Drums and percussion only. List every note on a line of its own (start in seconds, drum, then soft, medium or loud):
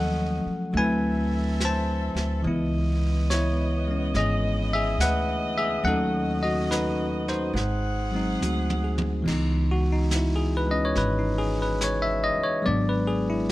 0.75 brush sweep soft
1.60 snare soft
1.60 hi-hat pedal soft
2.16 snare soft
2.45 brush sweep soft
3.30 snare soft
3.30 hi-hat pedal soft
4.15 brush sweep soft
4.15 snare soft
5.00 snare soft
5.00 hi-hat pedal soft
5.86 brush sweep soft
6.72 snare soft
6.72 hi-hat pedal soft
7.28 snare soft
7.56 brush sweep soft
7.56 snare soft
8.42 hi-hat pedal medium
8.42 high tom soft
8.70 high tom soft
8.98 high tom medium
9.26 brush sweep soft
9.26 kick medium
9.26 snare soft
9.26 crash medium
10.11 snare soft
10.11 hi-hat pedal medium
10.96 brush sweep soft
10.96 snare soft
11.81 snare soft
11.81 hi-hat pedal medium
12.65 brush sweep soft